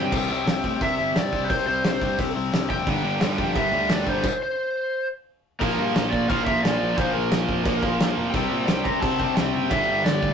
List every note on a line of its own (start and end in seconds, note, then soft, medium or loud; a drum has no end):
0.00 0.11 C3 loud
0.00 0.11 G3 medium
0.00 0.12 C4 loud
0.00 0.84 G5 loud
0.12 0.26 C2 loud
0.12 0.30 C3 medium
0.12 0.29 G3 loud
0.12 0.29 C4 loud
0.12 kick loud
0.12 crash loud
0.28 0.43 C2 loud
0.28 0.46 C3 medium
0.28 0.47 G3 medium
0.28 0.47 C4 loud
0.46 0.60 C2 loud
0.46 0.64 C3 medium
0.46 0.64 G3 loud
0.46 0.63 C4 loud
0.46 snare loud
0.46 open hi-hat medium
0.63 0.78 A2 medium
0.63 0.80 C3 medium
0.63 0.82 G3 medium
0.63 0.81 C4 medium
0.63 kick medium
0.81 0.95 C3 loud
0.81 0.98 C3 medium
0.81 0.99 G3 loud
0.81 0.98 C4 loud
0.81 1.13 E5 loud
0.81 kick loud
0.81 open hi-hat medium
0.99 1.13 G1 medium
0.99 1.15 C3 medium
0.99 1.17 G3 medium
0.99 1.16 C4 loud
1.15 1.29 G2 medium
1.15 1.34 C3 loud
1.15 1.34 G3 loud
1.15 1.33 C4 loud
1.15 1.47 D5 medium
1.15 snare loud
1.15 open hi-hat medium
1.33 1.47 C2 loud
1.33 1.50 C3 medium
1.33 1.52 G3 medium
1.33 1.51 C4 loud
1.33 kick medium
1.44 1.48 B4 medium
1.44 1.65 C5 medium
1.50 1.64 C2 medium
1.50 1.67 C3 medium
1.50 1.68 G3 loud
1.50 1.66 C4 loud
1.50 kick loud
1.50 open hi-hat medium
1.67 1.81 C2 medium
1.67 1.83 C3 medium
1.67 1.85 G3 loud
1.67 1.85 C4 medium
1.67 2.31 C5 medium
1.84 1.99 C2 loud
1.84 2.03 C3 loud
1.84 2.03 G3 loud
1.84 2.02 C4 loud
1.84 snare loud
1.84 open hi-hat medium
2.01 2.16 G2 medium
2.01 2.18 C3 medium
2.01 2.18 G3 medium
2.01 2.18 C4 medium
2.01 kick medium
2.18 2.33 C2 loud
2.18 2.36 C3 medium
2.18 2.36 G3 loud
2.18 2.35 C4 loud
2.18 kick loud
2.18 open hi-hat medium
2.36 2.50 C2 medium
2.36 2.52 C3 medium
2.36 2.52 G3 medium
2.36 2.53 C4 medium
2.53 2.67 C2 medium
2.53 2.70 C3 loud
2.53 2.70 G3 loud
2.53 2.69 C4 loud
2.53 snare loud
2.53 open hi-hat medium
2.69 2.84 F1 medium
2.69 2.87 C3 medium
2.69 2.86 G3 medium
2.69 2.86 C4 loud
2.69 3.56 G5 loud
2.69 kick medium
2.86 3.01 G1 loud
2.86 3.04 G2 loud
2.86 3.03 D3 loud
2.86 3.03 G3 loud
2.86 kick loud
2.86 open hi-hat medium
3.03 3.18 G1 loud
3.03 3.20 G2 medium
3.03 3.21 D3 medium
3.03 3.21 G3 loud
3.20 3.35 G1 medium
3.20 3.38 G2 loud
3.20 3.37 D3 loud
3.20 3.37 G3 loud
3.20 snare loud
3.20 open hi-hat medium
3.38 3.53 F2 loud
3.38 3.54 G2 medium
3.38 3.54 D3 medium
3.38 3.54 G3 loud
3.38 kick medium
3.55 3.72 G2 loud
3.55 3.70 G2 loud
3.55 3.72 D3 loud
3.55 3.71 G3 loud
3.55 3.91 E5 loud
3.55 kick loud
3.55 open hi-hat medium
3.72 3.87 D2 loud
3.72 3.89 G2 medium
3.72 3.89 D3 medium
3.72 3.89 G3 loud
3.88 4.03 D2 medium
3.88 4.05 G2 loud
3.88 4.05 D3 loud
3.88 4.04 G3 loud
3.88 4.09 D5 loud
3.88 snare loud
3.88 open hi-hat medium
4.06 4.21 G1 loud
4.06 4.23 G2 medium
4.06 4.23 D3 medium
4.06 4.22 G3 medium
4.06 4.41 C5 medium
4.06 kick medium
4.24 kick loud
4.24 crash loud
4.43 5.06 C5 medium
5.59 5.74 A#1 loud
5.59 6.27 A#2 loud
5.59 6.29 F3 medium
5.59 6.30 A#3 loud
5.59 5.92 A#4 medium
5.59 kick loud
5.59 crash medium
5.78 5.91 G2 loud
5.95 6.08 A#1 medium
5.95 snare loud
5.95 crash medium
6.11 6.24 A#2 medium
6.11 6.28 D5 medium
6.11 kick medium
6.28 6.54 A#1 loud
6.28 6.95 A#2 medium
6.28 6.96 F3 medium
6.28 6.97 A#3 medium
6.28 6.44 F5 loud
6.28 kick loud
6.28 crash medium
6.45 6.63 F3 medium
6.45 6.63 A#3 medium
6.45 6.62 E5 medium
6.45 kick loud
6.50 6.62 A#2 medium
6.63 6.76 A#1 loud
6.63 6.97 A#2 medium
6.63 6.97 F3 medium
6.63 6.98 A#3 medium
6.63 6.98 D5 loud
6.63 snare loud
6.63 crash medium
6.81 6.93 A#1 loud
6.96 7.10 A#1 loud
6.96 7.63 A#2 medium
6.96 7.64 F3 loud
6.96 7.65 A#3 loud
6.96 7.13 C5 loud
6.96 kick loud
6.96 crash medium
7.13 7.27 A#1 loud
7.13 8.13 A#4 loud
7.31 7.44 A#1 loud
7.31 snare loud
7.31 crash medium
7.49 7.61 F2 loud
7.49 kick medium
7.64 7.78 A#1 loud
7.64 8.32 A#2 medium
7.64 8.33 F3 medium
7.64 8.34 A#3 medium
7.64 kick loud
7.64 crash medium
7.83 7.95 A#1 medium
7.83 7.99 A#2 medium
7.83 8.00 F3 medium
7.83 7.99 A#3 medium
7.83 kick loud
8.00 8.12 A#1 loud
8.00 8.33 A#2 medium
8.00 8.34 F3 medium
8.00 8.35 A#3 medium
8.00 snare loud
8.00 crash medium
8.16 8.29 F1 loud
8.31 8.46 C2 loud
8.31 9.00 C3 loud
8.31 9.02 G3 loud
8.31 8.66 G5 loud
8.31 kick loud
8.31 crash medium
8.35 9.02 C4 loud
8.52 8.64 A#2 loud
8.67 8.81 C2 loud
8.67 8.84 G5 loud
8.67 snare loud
8.67 crash medium
8.84 8.97 C3 loud
8.84 9.01 A#5 loud
8.84 kick medium
9.01 9.27 C2 loud
9.01 9.69 C3 medium
9.01 9.70 G3 medium
9.01 9.71 C4 medium
9.01 9.35 A5 loud
9.01 kick loud
9.01 crash medium
9.20 9.36 C3 medium
9.20 9.37 G3 medium
9.20 9.36 C4 medium
9.20 kick medium
9.35 9.50 C2 medium
9.35 9.70 C3 medium
9.35 9.71 G3 medium
9.35 9.68 G5 loud
9.35 snare loud
9.35 crash medium
9.40 9.72 C4 loud
9.54 9.67 F#1 loud
9.70 9.83 G1 loud
9.70 10.34 G2 medium
9.70 10.34 D3 loud
9.70 10.34 G3 loud
9.70 10.04 E5 loud
9.70 kick loud
9.70 crash medium
9.88 10.00 G1 loud
10.04 10.18 G1 loud
10.04 10.34 D5 loud
10.04 snare loud
10.04 crash medium
10.23 10.34 D2 medium
10.23 kick medium